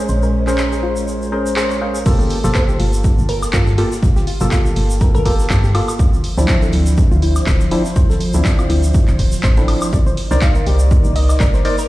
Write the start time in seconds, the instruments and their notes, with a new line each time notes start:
Already playing: string machine G#3 C#4 C5
0.08 fm bass A#1, synth arpeggio sound C5, shaker
0.23 synth arpeggio sound A#4, shaker
0.47 synth stab C#4 G#4 A#4 C5, clap, shaker
0.58 clap, shaker
0.72 synth arpeggio sound G#4, shaker
0.83 synth arpeggio sound F4
0.96 shaker
1.08 shaker
1.22 shaker
1.32 synth stab C#4 G#4 A#4 C5, synth arpeggio sound A#4
1.46 shaker
1.56 synth stab C#4 G#4 A#4 C5, synth arpeggio sound G#4, clap, shaker
1.70 synth arpeggio sound C#5, shaker
1.81 synth stab C#4 G#4 A#4 C5, synth arpeggio sound F5
1.95 shaker
2.06 fm bass G1, synth stab A#3 F4 G4 A4, string machine F4, synth arpeggio sound A#4, kick, closed hi-hat, crash, shaker
2.20 synth arpeggio sound A4, shaker
2.30 closed hi-hat, open hi-hat
2.44 fm bass G1, synth stab A#3 F4 G4 A4, snare, shaker
2.55 synth pluck C5, kick, snare, clap, closed hi-hat, shaker
2.69 synth arpeggio sound G4, shaker
2.80 fm bass G1, synth arpeggio sound F4, closed hi-hat, open hi-hat
2.93 shaker
3.04 kick, closed hi-hat, shaker
3.18 fm bass G1, shaker
3.29 synth pluck A#4, closed hi-hat, open hi-hat
3.42 snare, high woodblock, shaker
3.53 fm bass G2, synth pluck F4, synth arpeggio sound A#4, kick, snare, clap, closed hi-hat, shaker
3.67 synth arpeggio sound A4, snare, shaker
3.78 synth stab A#3 F4 G4 A4, synth pluck F4, closed hi-hat, open hi-hat
3.92 snare, shaker
4.03 fm bass G1, kick, closed hi-hat, shaker
4.16 synth arpeggio sound G4, snare, shaker
4.27 synth arpeggio sound F4, closed hi-hat, open hi-hat
4.40 fm bass G1, synth stab A#3 F4 G4 A4, shaker
4.51 synth pluck F4, kick, snare, clap, closed hi-hat, shaker
4.66 closed hi-hat, shaker
4.76 fm bass G1, closed hi-hat, open hi-hat
4.90 shaker
5.01 synth arpeggio sound A#4, kick, closed hi-hat, shaker
5.15 fm bass G1, synth arpeggio sound A4, synth pluck A#4, closed hi-hat, shaker
5.25 synth stab A#3 F4 G4 A4, synth pluck A#4, kick, closed hi-hat, open hi-hat
5.39 snare, shaker
5.49 fm bass G2, synth stab A#3 F4 G4 A4, kick, snare, clap, closed hi-hat, shaker
5.64 synth arpeggio sound G4, snare, shaker
5.75 synth stab A#3 F4 G4 A4, synth arpeggio sound F4, snare, closed hi-hat, open hi-hat, high woodblock
5.88 high woodblock, shaker
5.99 fm bass D2, string machine F3 E4 C5, kick, closed hi-hat, shaker
6.14 shaker
6.24 closed hi-hat, open hi-hat
6.37 fm bass D2, synth stab F3 C4 D4 E4, snare, shaker
6.48 synth arpeggio sound C5, kick, snare, clap, closed hi-hat, shaker
6.62 synth arpeggio sound A4, shaker
6.72 fm bass D2, closed hi-hat, open hi-hat
6.86 shaker
6.97 kick, closed hi-hat, shaker
7.11 fm bass D2, synth arpeggio sound F4, shaker
7.22 synth arpeggio sound E4, closed hi-hat, open hi-hat
7.36 snare, high woodblock, shaker
7.46 fm bass D1, kick, snare, clap, closed hi-hat, shaker
7.61 snare, shaker
7.71 synth stab F3 C4 D4 E4, closed hi-hat, open hi-hat
7.85 snare, shaker
7.96 fm bass D2, synth arpeggio sound C5, kick, closed hi-hat, shaker
8.10 synth arpeggio sound A4, snare, shaker
8.20 closed hi-hat, open hi-hat
8.34 fm bass D2, synth stab F3 C4 D4 E4, shaker
8.45 kick, snare, clap, closed hi-hat, shaker
8.58 synth arpeggio sound F4, closed hi-hat, high woodblock, shaker
8.70 fm bass D2, synth arpeggio sound E4, closed hi-hat, open hi-hat
8.83 shaker
8.94 kick, closed hi-hat, shaker
9.08 fm bass D1, clap, closed hi-hat, shaker
9.19 kick, closed hi-hat, open hi-hat
9.32 snare, open hi-hat, shaker
9.43 fm bass A1, synth arpeggio sound C5, kick, snare, clap, closed hi-hat, shaker
9.56 synth stab F3 C4 D4 E4, synth arpeggio sound A4, snare, shaker
9.68 snare, closed hi-hat, open hi-hat, high woodblock
9.82 high woodblock, shaker
9.93 fm bass C2, string machine A#3 D#4 D5, synth arpeggio sound D5, kick, closed hi-hat, shaker
10.06 synth arpeggio sound C5, shaker
10.17 closed hi-hat, open hi-hat
10.31 fm bass C2, synth stab D#4 A#4 C5 D5, snare, shaker
10.41 synth pluck F5, kick, snare, clap, closed hi-hat, shaker
10.55 synth arpeggio sound A#4, shaker
10.66 fm bass C2, synth arpeggio sound G4, closed hi-hat, open hi-hat
10.79 shaker
10.91 kick, closed hi-hat, shaker
11.04 fm bass C2, shaker
11.16 synth pluck D#5, closed hi-hat, open hi-hat
11.29 snare, high woodblock, shaker
11.40 fm bass G1, synth pluck A#4, synth arpeggio sound D5, kick, snare, clap, closed hi-hat, shaker
11.54 synth arpeggio sound C5, snare, shaker
11.65 synth stab D#4 A#4 C5 D5, closed hi-hat, open hi-hat
11.78 synth pluck A#4, snare, shaker